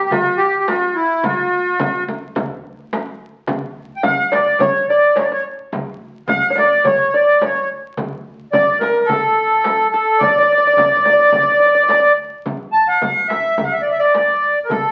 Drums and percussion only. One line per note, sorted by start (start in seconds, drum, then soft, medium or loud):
0.11 darbuka dum loud
0.11 frame drum loud
0.40 darbuka ka soft
0.68 darbuka tek medium
0.68 frame drum medium
0.82 darbuka ka soft
1.23 darbuka dum medium
1.23 frame drum loud
1.52 darbuka ka soft
1.80 frame drum loud
1.80 darbuka dum medium
1.95 darbuka ka soft
2.08 frame drum medium
2.36 frame drum loud
2.36 darbuka dum medium
2.65 darbuka ka soft
2.79 darbuka ka soft
2.93 darbuka tek medium
2.93 frame drum medium
3.47 frame drum loud
3.47 darbuka dum medium
3.63 darbuka ka soft
4.04 frame drum loud
4.04 darbuka dum medium
4.33 darbuka tek medium
4.33 frame drum medium
4.59 darbuka dum medium
4.59 frame drum loud
4.89 darbuka ka soft
5.17 darbuka tek medium
5.17 frame drum medium
5.31 darbuka ka soft
5.73 frame drum medium
5.73 darbuka dum medium
5.87 darbuka ka soft
6.28 darbuka dum medium
6.28 frame drum medium
6.58 frame drum medium
6.84 darbuka dum loud
6.84 frame drum medium
7.14 darbuka ka soft
7.42 darbuka tek medium
7.42 frame drum medium
7.56 darbuka ka soft
7.97 frame drum medium
7.97 darbuka dum medium
8.13 darbuka ka soft
8.53 frame drum medium
8.53 darbuka dum medium
8.81 darbuka tek medium
8.81 frame drum medium
9.09 darbuka dum medium
9.09 frame drum medium
9.38 darbuka ka soft
9.64 darbuka tek medium
9.64 frame drum medium
9.80 darbuka ka soft
10.21 frame drum medium
10.21 darbuka dum medium
10.36 darbuka ka soft
10.49 darbuka ka soft
10.77 darbuka dum medium
10.77 frame drum medium
11.05 frame drum medium
11.32 frame drum medium
11.32 darbuka dum medium
11.89 darbuka tek medium
11.89 frame drum medium
12.04 darbuka ka soft
12.46 darbuka dum medium
12.46 frame drum medium
12.60 darbuka ka soft
13.02 darbuka dum medium
13.02 frame drum medium
13.30 darbuka tek medium
13.30 frame drum medium
13.44 darbuka ka soft
13.58 frame drum medium
13.58 darbuka dum medium
13.86 darbuka ka soft
14.01 darbuka ka soft
14.14 darbuka tek medium
14.14 frame drum medium
14.28 darbuka ka soft
14.70 darbuka dum medium
14.70 frame drum medium
14.85 darbuka ka soft